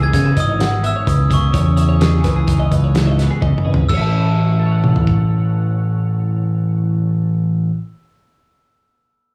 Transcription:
0.00 2.22 E3 medium
0.00 0.83 B3 medium
0.00 0.13 D#4 medium
0.00 1.29 G#4 medium
0.00 0.26 G#4 medium
0.00 0.08 G#6 medium
0.13 0.32 C#3 medium
0.13 1.51 D#4 medium
0.13 0.38 G#6 medium
0.13 kick loud
0.13 snare soft
0.13 closed hi-hat medium
0.26 0.37 B4 medium
0.37 0.93 G#1 medium
0.37 0.49 D#5 medium
0.37 0.82 D#6 medium
0.37 kick medium
0.37 closed hi-hat medium
0.49 0.60 C#5 medium
0.59 1.07 G#2 medium
0.59 0.84 F#5 medium
0.59 snare medium
0.59 closed hi-hat medium
0.83 1.55 B3 medium
0.83 0.95 E5 medium
0.83 1.07 E6 medium
0.83 closed hi-hat medium
0.96 1.07 C#5 medium
1.05 1.26 C#2 medium
1.05 1.50 C#3 medium
1.05 1.30 B4 medium
1.05 kick loud
1.05 closed hi-hat medium
1.09 1.19 D#6 medium
1.30 1.49 C#2 medium
1.30 1.51 G#4 medium
1.30 1.53 D#5 medium
1.30 1.76 C#6 medium
1.30 kick medium
1.30 closed hi-hat medium
1.52 2.24 E2 medium
1.52 2.23 C#3 medium
1.52 1.65 C#5 medium
1.52 kick loud
1.52 closed hi-hat medium
1.66 1.77 C#5 medium
1.76 3.64 G#4 medium
1.76 1.88 E5 medium
1.76 closed hi-hat medium
1.89 2.01 C#5 medium
2.01 2.24 G#4 medium
2.01 snare loud
2.01 closed hi-hat medium
2.23 2.43 C#2 medium
2.23 3.98 E3 medium
2.23 2.36 B4 medium
2.23 kick medium
2.23 snare soft
2.23 closed hi-hat medium
2.36 2.60 G#4 medium
2.47 2.67 C#2 medium
2.47 3.86 D#4 medium
2.47 kick loud
2.47 closed hi-hat medium
2.60 2.71 D#5 medium
2.71 3.28 C#2 medium
2.71 2.84 B4 medium
2.71 kick medium
2.71 closed hi-hat soft
2.84 3.07 C#5 medium
2.94 3.42 G#2 medium
2.94 snare medium
2.94 closed hi-hat medium
3.07 3.18 D#5 medium
3.18 3.86 B3 soft
3.18 3.30 B4 medium
3.18 snare soft
3.18 closed hi-hat medium
3.31 3.42 G#4 medium
3.41 3.51 C#2 medium
3.41 3.85 C#3 medium
3.41 3.66 D#5 medium
3.41 kick loud
3.41 high tom medium
3.58 mid tom medium
3.65 3.84 G#1 medium
3.65 3.86 G#4 medium
3.65 3.90 B4 medium
3.74 floor tom medium
3.89 7.70 A1 medium
3.89 7.74 A2 medium
3.89 4.01 A4 medium
3.89 7.70 E6 medium
3.89 kick medium
3.89 crash medium
3.94 7.72 C#5 medium
3.94 7.74 E5 medium
3.99 7.79 E3 medium
3.99 7.76 A5 medium
4.09 4.59 C#4 medium
4.19 4.65 E4 medium
4.29 4.71 F#4 soft
4.60 7.74 A4 medium
4.66 7.77 C#5 medium
4.71 7.80 F#5 medium
4.84 mid tom medium
4.96 floor tom medium
5.07 kick medium

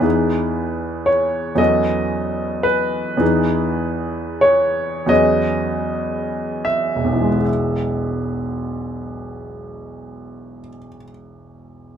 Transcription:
0.00 1.52 E2 soft
0.00 1.53 E3 soft
0.00 1.53 B3 soft
0.00 1.54 D#4 soft
0.00 1.54 G#4 soft
0.00 1.08 B4 soft
1.06 1.58 C#5 medium
1.55 3.14 E2 soft
1.55 3.15 F#3 soft
1.55 3.15 B3 soft
1.55 3.16 C#4 soft
1.55 3.16 A4 soft
1.55 2.63 D#5 medium
2.63 4.42 B4 medium
3.17 5.03 E2 soft
3.17 5.04 E3 soft
3.17 5.04 B3 soft
3.17 5.05 D#4 soft
3.17 5.05 G#4 soft
4.41 5.09 C#5 medium
5.06 7.41 E2 soft
5.06 7.41 F#3 soft
5.06 7.28 B3 soft
5.06 7.42 C#4 soft
5.06 7.37 G#4 soft
5.06 6.65 D#5 medium
6.65 7.44 E5 medium
6.95 10.60 E1 soft
7.04 10.69 B1 soft
7.13 10.77 E3 soft
7.22 10.86 G#3 soft
7.30 10.94 B3 soft
7.38 11.03 G#4 soft
7.46 11.10 E5 soft

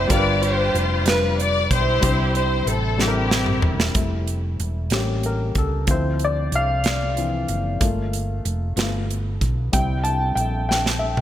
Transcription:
0.00 0.11 C3 medium
0.00 0.07 G3 medium
0.00 0.12 C4 medium
0.00 0.12 E4 medium
0.00 0.10 C5 medium
0.00 0.12 C5 medium
0.00 0.13 C5 medium
0.00 0.12 D5 medium
0.07 0.70 G1 loud
0.07 1.02 G2 medium
0.07 0.68 G3 medium
0.07 0.68 D4 medium
0.07 0.69 F4 medium
0.07 0.42 F4 medium
0.07 1.02 G4 medium
0.07 0.17 A#4 medium
0.07 0.40 D5 medium
0.07 kick loud
0.07 closed hi-hat medium
0.11 0.45 D5 medium
0.17 0.72 B4 medium
0.42 1.35 F4 medium
0.42 1.06 C5 medium
0.42 0.80 C5 medium
0.42 closed hi-hat soft
0.74 1.67 F1 medium
0.74 closed hi-hat soft
1.06 1.65 G3 medium
1.06 1.65 D4 medium
1.06 1.66 F4 medium
1.06 1.39 B4 medium
1.06 1.66 B4 medium
1.06 1.43 B4 medium
1.06 snare medium
1.06 closed hi-hat medium
1.38 1.68 D5 medium
1.38 1.65 D5 medium
1.38 closed hi-hat medium
1.66 1.75 D5 medium
1.71 2.00 B1 medium
1.71 2.64 E4 medium
1.71 2.64 G4 medium
1.71 2.35 C5 medium
1.71 2.36 C5 medium
1.71 kick medium
1.71 closed hi-hat soft
2.01 2.63 C2 loud
2.01 2.95 C3 medium
2.01 2.61 G3 medium
2.01 2.61 C4 medium
2.01 2.10 D4 medium
2.01 2.62 C5 medium
2.01 kick loud
2.01 closed hi-hat medium
2.10 2.65 E4 medium
2.35 2.65 C5 medium
2.35 2.69 C5 medium
2.35 closed hi-hat soft
2.66 3.59 A1 medium
2.66 3.03 A4 medium
2.66 3.00 A4 medium
2.66 closed hi-hat soft
2.98 3.57 G3 medium
2.98 3.58 C4 medium
2.98 3.59 E4 medium
2.98 3.73 G4 medium
2.98 3.06 A4 medium
2.98 snare medium
3.02 3.93 C4 medium
3.02 3.93 E4 medium
3.08 3.62 A#4 medium
3.31 snare medium
3.46 mid tom medium
3.62 3.93 E1 medium
3.62 floor tom medium
3.80 snare medium
3.94 4.55 F1 medium
3.94 4.87 G3 soft
3.94 4.87 A3 soft
3.94 4.88 E4 soft
3.94 kick medium
3.94 closed hi-hat medium
4.27 closed hi-hat soft
4.60 4.89 E1 medium
4.60 closed hi-hat soft
4.90 5.52 A1 medium
4.90 5.34 G3 soft
4.90 5.35 A#3 soft
4.90 5.35 C#4 medium
4.90 5.22 G4 medium
4.90 snare medium
4.90 closed hi-hat medium
5.23 5.33 A#4 medium
5.23 closed hi-hat soft
5.55 5.85 C#2 medium
5.55 5.90 A4 medium
5.55 kick medium
5.55 closed hi-hat soft
5.87 6.48 D2 medium
5.87 6.30 F3 medium
5.87 6.31 C4 soft
5.87 6.31 E4 medium
5.87 6.23 C5 medium
5.87 kick medium
5.87 closed hi-hat medium
6.19 closed hi-hat soft
6.25 6.53 D5 medium
6.52 7.45 C2 medium
6.52 8.11 F5 loud
6.52 closed hi-hat soft
6.84 snare medium
6.84 closed hi-hat medium
7.16 7.46 E3 soft
7.16 7.46 F3 soft
7.16 7.46 C4 soft
7.16 closed hi-hat soft
7.48 7.79 F#1 medium
7.48 closed hi-hat soft
7.80 8.41 G1 medium
7.80 8.73 A3 medium
7.80 8.73 A#3 soft
7.80 8.74 F4 medium
7.80 kick medium
7.80 closed hi-hat medium
8.13 closed hi-hat soft
8.45 8.75 F1 medium
8.45 closed hi-hat soft
8.76 9.37 G1 medium
8.76 9.69 A3 soft
8.76 9.70 B3 soft
8.76 9.70 F4 medium
8.76 snare medium
8.76 closed hi-hat medium
9.10 closed hi-hat soft
9.41 9.71 B1 medium
9.41 kick medium
9.41 closed hi-hat soft
9.72 10.34 C2 loud
9.72 10.16 G3 medium
9.72 10.16 C4 soft
9.72 10.16 E4 medium
9.72 10.03 G5 medium
9.72 kick loud
9.72 closed hi-hat medium
10.03 10.38 A5 medium
10.03 closed hi-hat soft
10.35 11.21 A#1 medium
10.35 10.67 G5 medium
10.35 closed hi-hat soft
10.69 11.03 G5 medium
10.69 snare soft
10.86 snare soft
10.99 11.21 E5 medium
11.17 mid tom medium

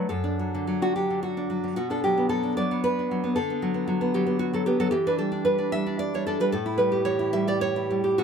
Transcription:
0.09 1.72 F#2 medium
0.09 0.78 A4 medium
0.24 0.81 D4 soft
0.39 0.66 F#3 soft
0.55 1.09 D3 soft
0.67 0.95 F#3 soft
0.82 1.36 D4 soft
0.82 0.95 F#4 medium
0.96 1.49 F#3 soft
0.96 1.21 G4 medium
1.10 1.62 D3 soft
1.23 1.74 F#4 medium
1.37 1.77 D4 soft
1.50 1.76 F#3 soft
1.64 1.77 D3 soft
1.76 2.58 B2 medium
1.76 1.90 F#4 medium
1.90 2.42 D4 soft
1.90 2.03 A4 medium
2.04 2.28 F#3 soft
2.04 2.29 G4 medium
2.18 2.70 B3 soft
2.29 2.57 F#3 soft
2.29 2.55 A4 medium
2.43 2.98 D4 soft
2.57 3.10 F#3 soft
2.57 2.83 D5 medium
2.71 3.22 B3 soft
2.84 3.34 B4 medium
2.99 3.37 D4 soft
3.11 3.36 F#3 soft
3.24 3.36 B3 soft
3.36 4.89 D3 medium
3.36 4.11 A4 medium
3.50 3.73 B3 soft
3.62 3.86 F#3 soft
3.74 4.00 B3 soft
3.87 4.14 F#3 soft
4.01 4.25 B3 soft
4.14 4.52 F#3 medium
4.14 4.39 G4 medium
4.27 4.65 B3 soft
4.39 4.53 F#4 medium
4.53 4.79 F#3 soft
4.53 4.66 A4 medium
4.66 4.93 B3 soft
4.66 4.79 G4 medium
4.80 4.92 F#3 medium
4.80 4.90 A4 medium
4.91 6.48 E3 medium
4.91 5.05 G4 medium
5.07 5.31 D4 soft
5.07 5.18 B4 medium
5.18 5.45 G3 soft
5.18 5.44 A4 medium
5.32 5.57 D4 soft
5.45 5.72 G3 soft
5.45 5.71 B4 medium
5.58 5.85 D4 medium
5.72 6.13 G3 medium
5.72 5.98 E5 medium
5.87 6.26 D4 medium
5.99 6.13 D5 medium
6.14 6.39 G3 medium
6.14 6.26 C#5 medium
6.27 6.53 D4 medium
6.27 6.39 A4 medium
6.40 6.53 G3 medium
6.40 6.52 B4 medium
6.52 8.15 A2 medium
6.52 6.77 A4 medium
6.66 7.18 E4 soft
6.78 7.32 G3 medium
6.78 7.04 B4 medium
6.92 7.46 G4 medium
7.05 7.91 E3 medium
7.05 7.32 C#5 medium
7.19 7.75 E4 medium
7.33 7.89 G3 medium
7.33 7.48 E5 medium
7.47 8.03 G4 medium
7.47 7.61 D5 medium
7.61 8.16 C#5 medium
7.76 8.18 E4 soft
7.91 8.18 G3 medium
8.04 8.18 G4 medium
8.18 8.24 B2 medium
8.18 8.24 F#4 medium

